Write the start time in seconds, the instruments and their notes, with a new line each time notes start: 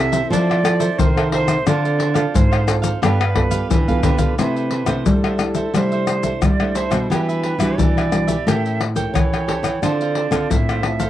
Already playing: nylon-string guitar C3 C4 E4 A4, flute E5
0.12 cavaquinho A4 C5 E5, pandeiro, maracas
0.30 nylon-string guitar F3, cavaquinho F4 A4 C5 E5, flute D5, pandeiro, maracas, surdo
0.49 cavaquinho A4 C5 E5, pandeiro, tamborim, maracas
0.63 nylon-string guitar C4 E4 A4, muted cavaquinho stroke, pandeiro, tamborim, maracas
0.80 cavaquinho A4 C5 E5, pandeiro, maracas
0.98 nylon-string guitar C3 D#3, flute C5, pandeiro, maracas, surdo
1.16 nylon-string guitar C4 A4, cavaquinho A4 C5 E5, pandeiro, tamborim, maracas
1.31 cavaquinho F4 A4 C5 E5, flute C5, pandeiro
1.48 cavaquinho A4 C5 E5, pandeiro, tamborim, maracas
1.66 nylon-string guitar D3 C4 F4 A4, cavaquinho D4 A4 C5 F5, flute D5, pandeiro, tamborim, maracas, surdo
1.85 cavaquinho A4 C5 F5, pandeiro, maracas
1.99 cavaquinho D4 A4 C5 F5, pandeiro
2.14 nylon-string guitar C4 F4 A4, cavaquinho A4 C5 F5, pandeiro, tamborim, maracas
2.34 nylon-string guitar G#2, flute C5, pandeiro, maracas, surdo
2.51 cavaquinho A4 C5 F5, pandeiro, tamborim, maracas
2.67 nylon-string guitar C4 F4 A4, muted cavaquinho stroke, pandeiro, tamborim, maracas
2.82 cavaquinho A4 C5 F5, pandeiro, maracas
3.02 nylon-string guitar G2 G3 B3 F4 A4, cavaquinho D4 G4 B4 F5, flute B4, pandeiro, tamborim, maracas, surdo
3.20 cavaquinho G4 B4 F5, pandeiro, tamborim, maracas
3.35 nylon-string guitar B3 F4 A4, muted cavaquinho stroke, pandeiro, tamborim, surdo
3.51 cavaquinho G4 B4 F5, pandeiro, maracas
3.70 nylon-string guitar D3 E3, flute B4, pandeiro, maracas, surdo
3.88 nylon-string guitar B3 F4 A4, cavaquinho G4 B4 F5, pandeiro, maracas, surdo
4.03 nylon-string guitar D3, cavaquinho D4 G4 B4 F5, pandeiro, maracas, surdo
4.18 cavaquinho G4 B4 F5, pandeiro, maracas, surdo
4.38 nylon-string guitar C3 A3 D4 E4, cavaquinho E4 A4 C5 E5, flute B4, pandeiro, tamborim, maracas, surdo
4.56 cavaquinho A4 C5 E5, pandeiro, maracas
4.71 cavaquinho E4 A4 C5 E5, pandeiro
4.86 nylon-string guitar C3 A3 D4 E4, cavaquinho A4 C5 E5, pandeiro, tamborim, maracas, surdo
5.06 nylon-string guitar G3, flute A4, pandeiro, maracas, surdo
5.24 cavaquinho A4 C5 E5, pandeiro, tamborim, maracas
5.39 nylon-string guitar A3 D4 E4, muted cavaquinho stroke, pandeiro, tamborim, maracas
5.55 cavaquinho A4 C5 E5, pandeiro, maracas, surdo
5.74 nylon-string guitar C3 G3 A3 D4 E4, cavaquinho E4 A4 C5 E5, flute C5, pandeiro, tamborim, maracas, surdo
5.92 cavaquinho A4 C5 E5, pandeiro, maracas
6.07 nylon-string guitar A3 D4 E4, muted cavaquinho stroke, pandeiro, tamborim, maracas
6.23 cavaquinho A4 C5 E5, pandeiro, maracas, surdo
6.42 nylon-string guitar G3, flute D5, pandeiro, tamborim, maracas, surdo
6.60 nylon-string guitar A3 D4 E4, cavaquinho A4 C5 E5, pandeiro, tamborim, maracas
6.75 cavaquinho E4 A4 C5 E5, flute C5, pandeiro, maracas
6.91 nylon-string guitar B2 G3 D4 F#4, cavaquinho A4 C5 E5, pandeiro, tamborim, maracas, surdo
7.10 nylon-string guitar E3, cavaquinho D4 G4 B4 E5, flute B4, pandeiro, tamborim, maracas, surdo
7.28 cavaquinho G4 B4 E5, pandeiro, maracas
7.43 cavaquinho D4 G4 B4 E5, pandeiro
7.59 nylon-string guitar E3 G3 D4 F#4, cavaquinho G4 B4 E5, pandeiro, tamborim, maracas, surdo
7.77 nylon-string guitar B2 E3, flute D5, pandeiro, maracas, surdo
7.97 cavaquinho G4 B4 E5, pandeiro, tamborim, maracas
8.11 nylon-string guitar G3 D4 F#4, muted cavaquinho stroke, pandeiro, tamborim, maracas
8.27 cavaquinho G4 B4 E5, pandeiro, maracas, surdo
8.46 nylon-string guitar A2 A3 C#4 G4 A#4, cavaquinho G4 A4 C#5 G5, flute E5, pandeiro, tamborim, maracas, surdo
8.65 cavaquinho A4 C#5 G5, pandeiro, maracas
8.80 muted cavaquinho stroke, pandeiro, tamborim
8.95 nylon-string guitar C#4 G4 A#4, cavaquinho A4 C#5 G5, pandeiro, maracas, surdo
9.13 nylon-string guitar E3, flute C#5, pandeiro, tamborim, maracas, surdo
9.33 cavaquinho A4 C#5 G5, pandeiro, tamborim, maracas
9.46 nylon-string guitar C#4 G4 A#4, cavaquinho G4 A4 C#5 G5, pandeiro
9.63 nylon-string guitar E3, cavaquinho A4 C#5 G5, pandeiro, tamborim, maracas, surdo
9.82 nylon-string guitar D3 C4 F4 A4, cavaquinho D4 A4 C5 F5, flute D5, pandeiro, tamborim, maracas, surdo
10.01 cavaquinho A4 C5 F5, pandeiro, maracas
10.15 cavaquinho D4 A4 C5 F5, pandeiro
10.31 nylon-string guitar D3 C4 F4 A4, cavaquinho A4 C5 F5, pandeiro, tamborim, maracas, surdo
10.50 nylon-string guitar A2, flute E5, pandeiro, maracas, surdo
10.69 cavaquinho A4 C5 F5, pandeiro, tamborim, maracas
10.83 nylon-string guitar C4 F4 A4, muted cavaquinho stroke, pandeiro, tamborim
11.00 cavaquinho A4 C5 F5, pandeiro, maracas, surdo